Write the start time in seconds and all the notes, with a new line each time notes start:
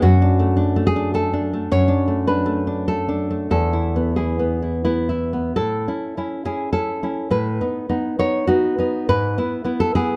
0.02 F#2 F#4
0.22 D4
0.39 A3
0.57 D4
0.76 A3
0.87 G#4
0.96 D4
1.14 A3 A4
1.34 D4
1.53 A3
1.72 F#2 C#5
1.88 D4
2.08 A3
2.27 D4 B4
2.46 A3
2.67 D4
2.88 A3 A4
3.09 D4
3.31 A3
3.51 E2 A4
3.73 E4
3.96 B3
4.16 E4 G#4
4.39 B3
4.62 E4
4.85 B3 E4
5.09 E4
5.33 B3
5.56 A2 A4
5.88 C#4 E4
6.17 C#4 E4
6.45 C#4 E4 G#4
6.73 C#4 E4 A4
7.03 C#4 E4
7.31 A2 B4
7.61 B3 D#4
7.89 B3 D#4
8.19 B3 D#4 C#5
8.47 B3 D#4 F#4
8.78 B3 D#4
9.09 G#2 B4
9.38 B3 E4
9.64 B3 E4
9.80 A4
9.95 B3 E4 G#4